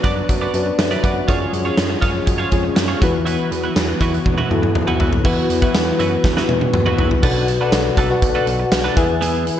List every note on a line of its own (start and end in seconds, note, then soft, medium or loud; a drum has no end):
0.00 0.22 F#2 loud
0.00 1.26 F#3 medium
0.00 1.26 B3 medium
0.00 0.54 D4 medium
0.00 1.24 D4 medium
0.00 0.54 F#4 medium
0.00 0.17 F#4 medium
0.00 0.55 B4 medium
0.00 0.56 D5 medium
0.04 0.16 B4 medium
0.04 0.15 D5 medium
0.04 kick medium
0.04 closed hi-hat medium
0.17 muted clean electric guitar stroke medium
0.29 0.47 F#2 loud
0.29 muted clean electric guitar stroke soft
0.29 kick medium
0.29 closed hi-hat medium
0.42 0.53 F#4 medium
0.42 0.53 B4 medium
0.42 0.54 D5 medium
0.54 0.72 F#2 medium
0.54 1.20 D4 medium
0.54 1.20 F#4 medium
0.54 1.20 B4 medium
0.54 0.80 D5 medium
0.54 muted clean electric guitar stroke soft
0.54 closed hi-hat medium
0.66 muted clean electric guitar stroke soft
0.79 0.97 F#2 loud
0.79 1.03 C#5 medium
0.79 1.03 E5 medium
0.79 muted clean electric guitar stroke soft
0.79 snare loud
0.79 closed hi-hat medium
0.91 1.02 F#4 medium
0.91 1.03 B4 medium
0.91 1.04 D5 medium
0.91 closed hi-hat medium
1.03 1.22 F#2 loud
1.03 1.14 F#4 medium
1.03 1.14 B4 medium
1.03 1.15 D5 medium
1.03 1.51 D5 medium
1.03 1.51 F#5 medium
1.03 kick medium
1.03 closed hi-hat medium
1.16 muted clean electric guitar stroke medium
1.28 1.46 F#2 loud
1.28 3.00 F3 medium
1.28 3.00 G#3 medium
1.28 3.00 C#4 medium
1.28 2.16 C#4 medium
1.28 1.51 F4 medium
1.28 2.16 F4 medium
1.28 1.51 G#4 medium
1.28 2.16 G#4 medium
1.28 1.52 C#5 medium
1.28 2.16 C#5 medium
1.28 kick loud
1.28 closed hi-hat medium
1.53 1.71 F#2 loud
1.53 muted clean electric guitar stroke soft
1.53 closed hi-hat medium
1.65 1.76 F4 medium
1.65 1.76 G#4 medium
1.65 1.76 C#5 medium
1.77 1.96 F#2 loud
1.77 snare loud
1.77 closed hi-hat medium
1.90 muted clean electric guitar stroke soft
2.02 2.20 F#2 loud
2.02 2.15 F4 medium
2.02 2.14 G#4 medium
2.02 2.13 C#5 medium
2.02 kick medium
2.02 closed hi-hat medium
2.14 muted clean electric guitar stroke soft
2.26 2.45 F#2 loud
2.26 muted clean electric guitar stroke soft
2.26 kick medium
2.26 closed hi-hat medium
2.38 2.50 F4 medium
2.38 2.50 G#4 medium
2.38 2.50 C#5 medium
2.51 2.70 F2 medium
2.51 3.02 C#4 medium
2.51 3.02 F4 medium
2.51 3.02 G#4 medium
2.51 3.02 C#5 loud
2.51 muted clean electric guitar stroke soft
2.51 kick medium
2.51 closed hi-hat medium
2.64 muted clean electric guitar stroke soft
2.76 2.95 F#2 medium
2.76 muted clean electric guitar stroke soft
2.76 snare loud
2.76 closed hi-hat loud
2.88 3.00 F4 medium
2.88 3.01 G#4 medium
2.88 3.02 C#5 medium
3.00 3.38 E2 loud
3.00 5.23 E3 medium
3.00 3.73 E3 medium
3.00 5.23 F#3 medium
3.00 3.89 B3 medium
3.00 5.23 B3 medium
3.00 3.12 E4 medium
3.00 3.90 E4 medium
3.00 3.12 F#4 medium
3.00 3.90 F#4 medium
3.00 3.12 B4 medium
3.00 3.90 B4 medium
3.00 kick loud
3.00 closed hi-hat medium
3.14 muted clean electric guitar stroke soft
3.25 3.49 E4 medium
3.25 3.49 F#4 medium
3.25 3.50 B4 medium
3.25 closed hi-hat medium
3.51 3.69 E2 loud
3.51 muted clean electric guitar stroke soft
3.51 closed hi-hat medium
3.64 3.75 E4 soft
3.64 3.75 F#4 medium
3.64 3.74 B4 medium
3.76 3.94 E2 medium
3.76 muted clean electric guitar stroke soft
3.76 snare loud
3.76 closed hi-hat medium
3.76 tambourine medium
3.89 muted clean electric guitar stroke medium
4.01 4.19 E2 loud
4.01 4.14 E4 medium
4.01 4.14 F#4 medium
4.01 4.12 B4 medium
4.01 kick medium
4.01 closed hi-hat medium
4.14 muted clean electric guitar stroke soft
4.14 closed hi-hat medium
4.25 4.44 E2 loud
4.25 muted clean electric guitar stroke soft
4.25 kick medium
4.25 high tom medium
4.38 4.49 E4 medium
4.38 4.49 F#4 medium
4.38 4.50 B4 medium
4.38 high tom medium
4.50 4.69 E2 loud
4.50 5.16 B3 medium
4.50 5.16 E4 medium
4.50 5.16 F#4 medium
4.50 5.17 A4 medium
4.50 muted clean electric guitar stroke soft
4.50 mid tom medium
4.62 muted clean electric guitar stroke medium
4.62 mid tom medium
4.75 4.93 E2 loud
4.75 muted clean electric guitar stroke soft
4.75 mid tom medium
4.87 4.99 E4 medium
4.87 5.00 F#4 medium
4.87 5.00 B4 medium
4.87 mid tom medium
5.00 5.18 E2 loud
5.00 5.11 E4 medium
5.00 5.11 F#4 medium
5.00 5.11 B4 medium
5.00 floor tom loud
5.13 muted clean electric guitar stroke soft
5.13 floor tom medium
5.24 5.43 E2 loud
5.24 7.21 E3 medium
5.24 5.95 E3 medium
5.24 7.21 F#3 medium
5.24 5.57 B3 medium
5.24 7.21 B3 medium
5.24 5.58 E4 medium
5.24 5.48 E4 medium
5.24 5.58 F#4 medium
5.24 5.48 F#4 medium
5.24 5.58 B4 medium
5.24 5.48 B4 medium
5.24 kick loud
5.24 crash loud
5.50 5.68 E2 loud
5.50 muted clean electric guitar stroke soft
5.50 closed hi-hat medium
5.61 6.27 B3 medium
5.61 6.27 E4 medium
5.61 5.73 E4 medium
5.61 6.28 F#4 medium
5.61 5.73 F#4 medium
5.61 5.73 B4 medium
5.61 6.28 B4 medium
5.61 kick medium
5.61 closed hi-hat soft
5.74 5.92 E2 loud
5.74 muted clean electric guitar stroke soft
5.74 snare loud
5.74 closed hi-hat medium
5.74 tambourine medium
5.87 muted clean electric guitar stroke soft
5.99 6.17 F#2 loud
5.99 6.13 E4 medium
5.99 6.12 F#4 medium
5.99 6.11 B4 medium
5.99 closed hi-hat medium
6.12 muted clean electric guitar stroke soft
6.24 6.42 E2 loud
6.24 muted clean electric guitar stroke medium
6.24 kick loud
6.24 snare medium
6.36 7.13 B3 medium
6.36 7.13 E4 medium
6.36 6.48 E4 medium
6.36 7.13 F#4 medium
6.36 6.49 F#4 medium
6.36 6.49 B4 medium
6.36 7.13 B4 loud
6.36 snare medium
6.48 6.67 E2 loud
6.48 muted clean electric guitar stroke soft
6.48 high tom medium
6.61 muted clean electric guitar stroke medium
6.61 high tom medium
6.74 6.92 E2 loud
6.74 muted clean electric guitar stroke soft
6.74 mid tom loud
6.86 6.98 E4 medium
6.86 6.98 F#4 medium
6.86 6.99 B4 medium
6.86 mid tom medium
6.98 7.17 E2 loud
6.98 7.09 E4 medium
6.98 7.09 F#4 medium
6.98 7.10 B4 medium
6.98 floor tom loud
7.11 muted clean electric guitar stroke medium
7.11 floor tom loud
7.23 7.59 B1 loud
7.23 7.94 B2 medium
7.23 7.46 D4 medium
7.23 7.56 F#4 medium
7.23 7.56 A4 medium
7.23 7.46 A4 medium
7.23 7.56 B4 medium
7.23 7.47 B4 medium
7.23 7.56 D5 medium
7.23 7.56 F#5 medium
7.23 kick loud
7.23 crash loud
7.48 muted clean electric guitar stroke soft
7.48 closed hi-hat medium
7.60 7.72 D4 medium
7.60 8.04 F#4 medium
7.60 8.04 A4 medium
7.60 7.71 A4 medium
7.60 8.04 B4 medium
7.60 7.71 B4 medium
7.60 8.05 D5 medium
7.60 8.05 F#5 medium
7.72 7.91 B1 loud
7.72 muted clean electric guitar stroke soft
7.72 snare loud
7.72 closed hi-hat medium
7.72 tambourine medium
7.86 muted clean electric guitar stroke soft
7.97 8.15 B1 loud
7.97 8.11 D4 medium
7.97 8.10 A4 medium
7.97 8.09 B4 medium
7.97 kick medium
7.97 closed hi-hat medium
8.10 8.97 F#4 medium
8.10 8.97 A4 medium
8.10 8.96 B4 medium
8.10 8.97 D5 medium
8.10 8.97 F#5 loud
8.10 muted clean electric guitar stroke soft
8.22 8.40 B1 loud
8.22 muted clean electric guitar stroke medium
8.22 kick loud
8.22 closed hi-hat loud
8.35 8.46 D4 medium
8.35 8.47 A4 medium
8.35 8.47 B4 medium
8.47 8.65 B1 loud
8.47 muted clean electric guitar stroke soft
8.47 closed hi-hat medium
8.60 muted clean electric guitar stroke medium
8.72 8.90 B1 loud
8.72 muted clean electric guitar stroke soft
8.72 snare loud
8.72 closed hi-hat loud
8.72 tambourine medium
8.84 8.96 D4 medium
8.84 8.97 A4 medium
8.84 8.98 B4 medium
8.96 9.50 E2 loud
8.96 9.60 E3 medium
8.96 9.07 B3 medium
8.96 9.51 E4 medium
8.96 9.07 E4 medium
8.96 9.51 G#4 medium
8.96 9.08 G#4 medium
8.96 9.52 B4 medium
8.96 9.52 E5 medium
8.96 9.52 G#5 loud
8.96 kick loud
8.96 closed hi-hat medium
9.09 muted clean electric guitar stroke soft
9.21 9.44 B3 loud
9.21 9.45 E4 loud
9.21 9.45 G#4 loud
9.21 closed hi-hat medium
9.46 muted clean electric guitar stroke soft
9.46 closed hi-hat medium